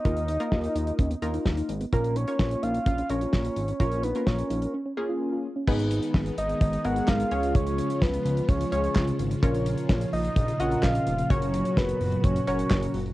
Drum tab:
CC |----------------|----------------|----------------|x---------------|
HH |xxxx-xxxxxxx-xxx|xxxx-xxxxxxx-xxx|xxxx-xxx--------|-xxx-xxxxxxx-xxx|
CP |----------------|----------------|----------------|------------x---|
SD |----o-------o---|----o-------o---|----o-----------|----o-------o---|
BD |o---o---o---o---|o---o---o---o---|o---o-----------|o---o---o---o---|

CC |----------------|----------------|----------------|
HH |xxxx-xxxxxxx-xxx|xxxx-xoxxxxx-xxx|xxxx-xoxxxxx-xox|
CP |------------x---|------------x---|------------x---|
SD |----o-------o---|----o-------o---|----o-------o---|
BD |o---o---o---o---|o---o---o---o---|o---o---o---o---|